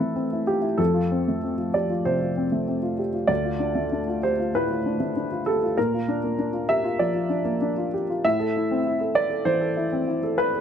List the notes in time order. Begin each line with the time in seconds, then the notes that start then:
Already playing: A2 E3 C4 E4 F4 A4 B4 C5
0.00 A3
0.16 C4
0.33 E4
0.47 F4 G4
0.62 E4
0.78 F2 A4
0.94 F4
1.12 C4
1.28 A3
1.44 C4
1.58 F4
1.74 G4 D5
1.90 F4
2.05 C3 C5
2.21 F4
2.37 C4
2.52 A3
2.68 C4
2.83 F4
2.99 G4
3.14 F4
3.27 D2 D5
3.44 F4
3.60 D4
3.75 A3
3.92 D4
4.07 F4
4.23 G4 C5
4.40 F4
4.55 A2 B4
4.70 F4
4.86 D4
5.00 A3
5.16 D4
5.32 F4
5.46 G4 A4
5.63 F4
5.77 A#2 A#4
5.94 F4
6.08 D4
6.24 A#3
6.39 D4
6.53 F4
6.69 G4 E5
6.84 F4
6.99 F3 D5
7.15 F4
7.30 D4
7.45 A#3
7.62 D4
7.77 F4
7.94 G4
8.10 F4
8.25 A2 E5
8.39 A4
8.56 E4
8.71 C4
8.87 E4
9.00 A4
9.15 B4 D5
9.30 A4
9.45 E3 C5
9.61 A4
9.77 E4
9.92 C4
10.08 E4
10.23 A4
10.38 B4
10.54 A4